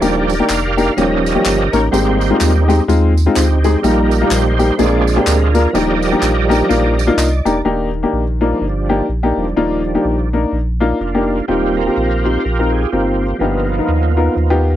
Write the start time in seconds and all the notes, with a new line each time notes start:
0.00 D#1 D#3 F3 G3 A#3 D4 D#4 G4 A#4 D5, tambourine
0.30 tambourine
0.39 A#3 D4 D#4 G4
0.48 F1 A#4 D5 F5, clap, tambourine
0.77 A#3 D4 D#4 G4, tambourine
0.97 D#1 D#3 F3 G3 A#3 C#4 D#4 G4 A#4 D#5, tambourine
1.26 tambourine
1.35 A#3 C#4 D#4 G4
1.45 G1, clap, tambourine
1.72 A1 A#3 C#4 D#4 A#4 C#5, tambourine
1.91 G#1 G#2 G3 G#3 A#3 C4 D#4 G4 C5, tambourine
2.21 tambourine
2.30 G#3 C4 D#4 F4
2.41 D#2, clap, tambourine
2.68 G#3 C4 D#4 G4, tambourine
2.88 D#2 G#3 C4 D#4 F4, tambourine
3.17 tambourine
3.26 G#3 C4 D#4 F4
3.35 D2 C4 D#4 G4, clap, tambourine
3.64 G#3 C4 D#4 G#4, tambourine
3.82 A#1 A#2 G3 A#3 D#4 G4 A#4, tambourine
4.11 tambourine
4.21 G3 A#3 D#4 F4
4.31 A#1 D#4 G4 C5, clap, tambourine
4.59 G3 A#3 D#4 G4, tambourine
4.78 A#1 A#2 G#3 A#3 C4 D4 F4 G#4 D5, tambourine
5.07 tambourine
5.16 A#3 D4 F4 G4
5.21 C5
5.27 D2 D4 F4 A#4, clap, tambourine
5.54 A#3 D4 F4 A#4, tambourine
5.73 D#1 D#3 F3 G3 A#3 D4 D#4 G4 A#4 D5 D#5, tambourine
6.03 tambourine
6.12 A#3 D4 D#4 G4
6.22 A#1, clap, tambourine
6.49 A#3 D4 D#4 G4, tambourine
6.69 A#1 A#3 D4 D#4 F4, tambourine
6.98 F3 G3 D4, tambourine
7.07 A#3 D4 D#4 F4
7.17 C2 D#5, clap, tambourine
7.45 E1 A#3 D4 D#4 G4 A#5, tambourine
7.65 D#1 D#3 A#3 D4 D#4 G4
8.03 A#3 D4 D#4 G4
8.13 A#1
8.41 F3 G3 A#3 D4 D#4 F4
8.61 G1
8.89 A#3 D4 D#4 G4
9.09 A#1
9.23 A#3 D4 D#4 G4
9.37 E1 F3 G3 D4
9.56 D#1 D#3 F3 G3 A#3 D4 D#4 F4
9.95 A#3 D4 D#4 G4
10.05 A#1
10.33 A#3 D4 D#4 A#4
10.52 A#1
10.80 A#3 D4 D#4 F4
11.00 F1 A#3 D4 F4
11.15 A#3 D4 D#4 G4
11.48 D#1 D#3 G3 A#3 C4 D#4 F4 G4
11.77 F4 G4 A#4
11.86 C4 D#4 F4 G4
11.97 A#1
12.24 C4 D#4 F4 G4 C5
12.44 A#1 F4 G4 A#4
12.59 C4 D#4 F4 A#4
12.72 G#4
12.92 G1 A#3 C4 D#4 F4 G4 A#4
13.38 G1 G2 F3 A#3 B3 D#4 F4 G4
13.78 B3 D#4 F4 A#4
13.88 D#2
14.17 B3 D#4 F4 A#4
14.35 D#2 F3 B3 D#4
14.50 B3 D#4 F4 G4